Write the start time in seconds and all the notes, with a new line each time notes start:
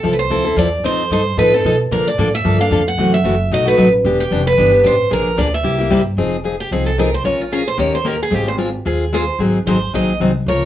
Already playing: A4
0.03 C2 F3 C4 E4 A4
0.13 B4
0.19 C5
0.30 D2 F3 C4 E4 A4
0.45 C4 E4 A4
0.56 E2 F3 C4 E4 A4 D5
0.84 F2 F3 C4 D#4 A4 C5
1.10 G2 F3 C4 D#4 A4 C5
1.37 A2 F3 C4 D#4 A4 B4
1.53 C4 D#4 A4
1.65 B2 F3 C4 D#4 A4
1.91 A#2 D3 F3 A#3 D4 A4 A#4
2.07 D5
2.18 A2 D3 F3 A#3 D4 A4
2.35 E5
2.44 G2 D3 F3 A#3 D4 A4
2.59 A#3 D4 A4 F5
2.71 F2 D3 F3 A#3 D4 A4
2.88 F#5
2.98 F#2 C3 E3 A3 E4 F#4
3.14 E5
3.24 F#1 C3 E3 A3 E4 F#4
3.51 B1 B2 F#3 A3 D#4 F#4 D#5
3.65 A3 D#4 F#4 B4
3.77 A1 B2 F#3 A3 D#4 F#4
4.04 E1 E3 B3 D4 G4
4.20 G4
4.31 F1 E3 B3 D4 G4
4.47 B4
4.57 G1 E3 B3 D4 G4
4.72 B3 D4 G4
4.83 A1 E3 B3 D4 G4 C5
5.10 A#1 D3 F3 A#3 D4 G#4 A#4
5.37 D2 D3 F3 A#3 D4 G#4 D5
5.54 E5
5.63 C2 C3 G3 A#3 E4 G4
5.79 A#3 E4 G4
5.90 G2 C3 G3 A#3 E4 G4
6.17 F1 F3 C4 D#4 G#4
6.44 F3 C4 D#4 G#4
6.60 G4
6.71 C2 F3 C4 D#4 G#4
6.86 A4
6.98 F3 C4 D#4 G#4 A#4
7.14 C5
7.24 A#1 F3 G#3 C#4 F4 A#4 C#5
7.41 F4
7.52 F3 G#3 C#4 F4 G#4 A#4
7.68 C5
7.78 D#2 D#3 A#3 C#4 G4 A#4 C#5
7.95 C5
8.05 D#3 A#3 C#4 G4 A#4
8.23 G#4
8.31 G#1 G#3 C4 F4 G4 G#4
8.48 C5
8.58 G#3 C4 F4 G#4
8.85 D#2 G#3 C4 F4 G#4
9.13 G#3 C4 F4 G#4 C5
9.39 G#1 D#3 F#3 C4 D#4 G#4
9.66 G#1 D#3 F#3 C4 D#4 G#4 C5
9.93 A#1 D#3 F#3 C4 D#4 G#4 D#5
10.20 C2 D#3 F#3 C4 D#4 G#4
10.46 C#2 C#3 F3 A#3 F4 A#4 C#5